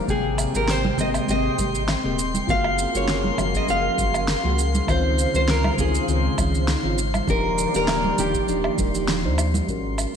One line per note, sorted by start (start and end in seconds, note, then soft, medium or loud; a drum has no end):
0.07 0.46 G#1 medium
0.07 0.50 C3 medium
0.07 0.51 G#3 medium
0.07 2.46 G#3 medium
0.07 0.51 A#3 medium
0.07 2.46 C4 medium
0.07 0.57 G#4 medium
0.07 2.46 G5 medium
0.07 0.51 G5 loud
0.07 9.70 C6 medium
0.07 9.70 C7 medium
0.07 kick loud
0.07 low conga medium
0.07 shaker soft
0.38 low woodblock medium
0.38 shaker medium
0.53 0.91 G#1 medium
0.53 0.95 C3 medium
0.53 0.95 G#3 medium
0.53 0.95 A#3 medium
0.53 0.96 G4 medium
0.53 0.70 A#4 medium
0.53 shaker soft
0.68 1.00 C5 loud
0.68 snare loud
0.68 shaker soft
0.85 high conga loud
0.97 1.19 G#1 medium
0.97 1.25 C3 medium
0.97 1.25 G#3 medium
0.97 1.25 A#3 medium
0.97 1.26 G4 medium
0.97 1.08 D#5 loud
0.97 kick medium
0.97 low conga medium
0.97 shaker medium
1.14 low woodblock medium
1.14 shaker soft
1.27 1.49 G#1 medium
1.27 1.55 C3 medium
1.27 1.55 G#3 medium
1.27 1.55 A#3 medium
1.27 1.56 G4 loud
1.27 2.16 D#5 loud
1.27 shaker soft
1.57 1.96 G#1 medium
1.57 1.81 C3 medium
1.57 1.81 G#3 medium
1.57 1.82 A#3 medium
1.57 1.82 G4 loud
1.57 kick loud
1.57 high conga medium
1.57 shaker medium
1.75 shaker soft
1.88 snare medium
1.88 low woodblock medium
1.88 shaker soft
2.04 2.41 D#1 medium
2.04 2.17 C3 medium
2.04 2.17 G#3 medium
2.04 2.18 A#3 medium
2.04 2.18 G4 loud
2.19 shaker medium
2.34 high conga medium
2.34 shaker soft
2.47 2.86 F#1 medium
2.47 2.90 G#3 medium
2.47 2.91 A#3 medium
2.47 4.56 C#4 medium
2.47 2.90 F4 medium
2.47 2.91 F#4 loud
2.47 4.56 G#4 medium
2.47 4.56 A#4 medium
2.47 9.64 F5 medium
2.47 2.92 F5 loud
2.47 kick loud
2.47 low conga medium
2.47 shaker soft
2.64 low woodblock medium
2.79 shaker medium
2.93 3.31 F#1 medium
2.93 3.35 G#3 medium
2.93 3.35 A#3 medium
2.93 3.34 F4 medium
2.93 3.36 F#4 medium
2.93 3.52 C#5 medium
2.93 shaker soft
3.08 snare medium
3.08 shaker soft
3.24 high conga medium
3.37 3.59 F#1 medium
3.37 3.65 F3 medium
3.37 3.65 G#3 medium
3.37 3.65 A#3 medium
3.37 3.66 F#4 medium
3.37 low conga medium
3.37 low woodblock medium
3.37 shaker medium
3.54 3.69 D#5 medium
3.54 kick medium
3.54 shaker soft
3.67 3.89 F#1 loud
3.67 3.95 F3 medium
3.67 3.95 G#3 medium
3.67 3.95 A#3 medium
3.67 3.96 F#4 medium
3.67 4.25 F5 loud
3.67 shaker soft
3.97 4.36 F#1 medium
3.97 4.21 F3 medium
3.97 4.21 G#3 medium
3.97 4.22 A#3 medium
3.97 4.22 F#4 loud
3.97 kick medium
3.97 high conga medium
3.97 shaker medium
4.14 low woodblock medium
4.14 shaker soft
4.28 snare loud
4.28 shaker soft
4.44 4.81 C#2 medium
4.44 4.56 F3 medium
4.44 4.57 G#3 medium
4.44 4.57 A#3 medium
4.44 4.57 F#4 loud
4.58 7.26 C#3 medium
4.58 7.26 G#3 medium
4.58 7.26 D#4 medium
4.58 7.26 C5 medium
4.58 shaker medium
4.75 high conga medium
4.75 shaker soft
4.87 5.26 C#2 loud
4.87 5.30 D#3 medium
4.87 5.30 C4 medium
4.87 5.31 C#4 medium
4.87 5.31 F4 loud
4.87 5.34 C5 loud
4.87 kick loud
4.87 low conga medium
4.87 low woodblock medium
4.87 shaker soft
5.19 shaker medium
5.34 5.71 C#2 medium
5.34 5.75 D#3 medium
5.34 5.75 C4 medium
5.34 5.75 C#4 medium
5.34 5.76 F4 medium
5.34 5.41 C5 loud
5.34 shaker soft
5.48 5.72 A#4 medium
5.48 snare loud
5.48 shaker soft
5.64 high conga medium
5.64 low woodblock medium
5.73 6.05 D#3 medium
5.73 5.79 A#4 medium
5.78 5.99 C#2 medium
5.78 6.05 C4 medium
5.78 6.05 C#4 medium
5.78 6.06 F4 medium
5.78 6.95 G#4 medium
5.78 kick medium
5.78 low conga medium
5.78 shaker medium
5.95 shaker soft
6.08 6.29 C#2 loud
6.08 6.35 D#3 medium
6.08 6.35 C4 medium
6.08 6.35 C#4 medium
6.08 6.36 F4 medium
6.08 shaker soft
6.38 6.76 C#2 medium
6.38 6.61 D#3 medium
6.38 6.61 C4 medium
6.38 6.62 C#4 medium
6.38 6.62 F4 loud
6.38 kick loud
6.38 high conga medium
6.38 low woodblock medium
6.38 shaker medium
6.55 shaker soft
6.68 snare medium
6.68 shaker soft
6.83 7.21 G#1 medium
6.83 6.97 D#3 medium
6.83 6.97 C4 medium
6.83 6.98 C#4 medium
6.83 6.98 F4 loud
6.98 shaker medium
7.14 high conga medium
7.14 low woodblock medium
7.14 shaker soft
7.27 7.66 D#1 loud
7.27 9.66 D#3 medium
7.27 7.70 F3 medium
7.27 9.66 A#3 medium
7.27 7.71 D4 medium
7.27 7.71 D#4 medium
7.27 9.66 G4 medium
7.27 7.71 G4 loud
7.27 7.75 A#4 loud
7.27 9.66 D5 medium
7.27 kick loud
7.27 low conga medium
7.27 shaker soft
7.58 shaker medium
7.73 8.11 D#1 medium
7.73 8.15 F3 medium
7.73 8.15 D4 medium
7.73 8.15 D#4 medium
7.73 8.16 G4 medium
7.73 8.20 A#4 loud
7.73 shaker soft
7.88 snare loud
7.88 low woodblock medium
7.88 shaker soft
8.04 high conga medium
8.17 8.39 D#1 medium
8.17 8.45 F3 medium
8.17 8.45 D4 medium
8.17 8.45 D#4 medium
8.17 9.35 G4 medium
8.17 8.46 G4 medium
8.17 low conga medium
8.17 shaker medium
8.34 kick medium
8.34 shaker soft
8.47 8.69 D#1 medium
8.47 8.75 F3 medium
8.47 8.75 D4 medium
8.47 8.75 D#4 medium
8.47 8.76 G4 medium
8.47 shaker soft
8.64 low woodblock medium
8.77 9.26 D#1 loud
8.77 8.90 F3 medium
8.77 8.90 D4 medium
8.77 8.91 D#4 medium
8.77 8.91 A#4 medium
8.77 kick loud
8.77 high conga medium
8.77 shaker medium
8.93 9.20 F3 medium
8.93 9.21 D4 medium
8.93 9.21 D#4 medium
8.93 9.21 G4 medium
8.93 shaker soft
9.08 snare loud
9.08 shaker soft
9.23 9.61 D#2 medium
9.23 9.64 F3 medium
9.23 9.65 D4 medium
9.23 9.65 D#4 medium
9.23 9.66 C5 medium
9.38 low woodblock medium
9.38 shaker medium
9.54 high conga medium
9.54 shaker soft
9.67 10.06 G#1 loud
9.67 10.10 G#3 medium
9.67 10.11 C#4 medium
9.67 10.11 F#4 medium
9.67 10.11 A#4 medium
9.67 kick medium
9.67 shaker soft
9.98 low woodblock medium
9.98 shaker medium